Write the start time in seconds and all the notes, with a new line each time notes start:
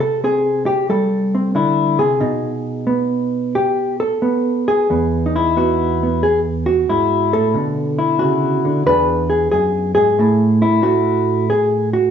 Already playing: C3
0.00 A4
0.24 C4 G#4
0.66 G4
0.89 G3 A4
1.35 C4
1.55 D3 E4
1.99 C3 G#4
2.20 B2 D#4
2.87 B3
3.55 G4
4.00 A4
4.22 B3
4.68 G#4
4.90 E2 B3
5.26 D#4
5.36 E4
5.57 B3 F#4
6.03 B3
6.23 G#4
6.66 F#4
6.89 G#2 E4
7.33 A2 A4
7.54 B2 D3
7.99 E4
8.19 C#3 F#4
8.65 D3
8.86 E2 B3 D4 G#4 B4
9.30 G#4
9.51 F#2 G#4
9.95 G#2 G#4
10.19 A2 A3 E4
10.62 E4
10.83 A3 F#4
11.50 G#4
11.93 F#4